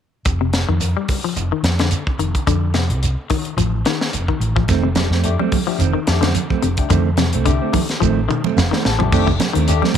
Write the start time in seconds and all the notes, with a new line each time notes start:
0.25 F1, kick, closed hi-hat, shekere
0.41 C3
0.53 snare, closed hi-hat, shekere
0.69 F2 D#3
0.81 closed hi-hat, shekere
0.97 G3
1.08 kick, open hi-hat, shekere
1.24 F3
1.36 F1, closed hi-hat, shekere
1.52 D#3
1.63 F2, snare, closed hi-hat, shekere
1.79 D3, snare, closed hi-hat
1.91 closed hi-hat, shekere
2.07 kick
2.19 F1 D#3, closed hi-hat, shekere
2.35 kick, closed hi-hat
2.47 F2 D3, kick, closed hi-hat, shekere
2.74 C3, snare, closed hi-hat, shekere
2.90 C2, closed hi-hat
3.03 closed hi-hat, shekere
3.30 D#3, kick, open hi-hat, shekere
3.45 closed hi-hat
3.57 A1 F3, closed hi-hat, shekere
3.85 D#3, snare, closed hi-hat, shekere
4.01 snare
4.13 F1, closed hi-hat, shekere
4.28 D#3, kick
4.40 A1, closed hi-hat, shekere
4.56 F3, kick
4.68 F1 D#3 A3 C4, kick, snare, closed hi-hat, shekere
4.83 C3
4.95 A3 D4 G4, snare, closed hi-hat, high conga, shekere
5.10 F2 C4, snare
5.14 A3
5.24 A3 D4 G4, closed hi-hat, shekere
5.39 G3 A3 C4, high conga
5.52 D4 G4, kick, open hi-hat, high conga, shekere
5.67 F3 A3 D4 G4
5.79 F1 D#3 C4, muted clean electric guitar stroke, closed hi-hat, shekere
5.93 D#3
6.07 F2 A3 D4 G4, snare, closed hi-hat, shekere
6.21 D3 C4, snare, closed hi-hat, high conga
6.35 closed hi-hat, high conga, shekere
6.50 A3 C4, kick, high conga
6.62 F1 C3 D4 G4, closed hi-hat, shekere
6.77 A3 D4 G4, kick, closed hi-hat
6.90 F2 D3 D#3 A3 C4, kick, closed hi-hat, shekere
7.17 C3, snare, closed hi-hat, high conga, shekere
7.33 C2 A3 C4, closed hi-hat
7.46 D3 A3 D4 G4, kick, closed hi-hat, shekere
7.62 A3 C4
7.73 D#3, kick, open hi-hat, high conga, shekere
7.89 snare, closed hi-hat
8.00 A1 D#3 F3 A3 C4, kick, shekere
8.29 D#3, mid tom, shekere
8.44 A3 C4, high conga
8.56 F1 F5, snare, high conga, shekere
8.71 D#3 A3 C4, snare
8.85 A1 A5, snare, shekere
8.99 F3 A3 D4 G4, floor tom
9.12 F1 D#3 A3 C4 D4 G4, kick, crash, shekere
9.27 C3, kick
9.40 snare, closed hi-hat, high conga, shekere
9.53 D#2 D#3 A3 C4 D4 G4, closed hi-hat
9.68 A3 D4 G4, closed hi-hat, shekere
9.82 G3 A3 C4, snare, high conga
9.94 high conga, low conga